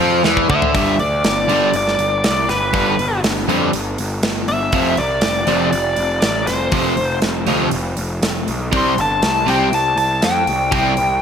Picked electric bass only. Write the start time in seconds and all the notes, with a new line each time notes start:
0.00 F2
0.25 E2
0.50 D2
0.75 G1
1.00 D2
1.25 G1
1.50 G1
1.74 G1
1.99 G1
2.25 C2
2.49 G1
2.74 G1
2.99 G1
3.23 G1
3.49 F2
3.74 G1
3.99 G1
4.23 G1
4.48 G1
4.73 F1
4.98 C2
5.22 F1
5.47 F1
5.72 F1
5.97 F1
6.22 A1
6.48 F1
6.72 F1
6.97 F1
7.22 F1
7.47 D2
7.73 F1
7.97 F1
8.22 F1
8.48 B1
8.72 C2
8.98 G1
9.23 C2
9.47 C2
9.72 C2
9.97 C2
10.22 F2
10.48 C2
10.72 C2
10.98 C2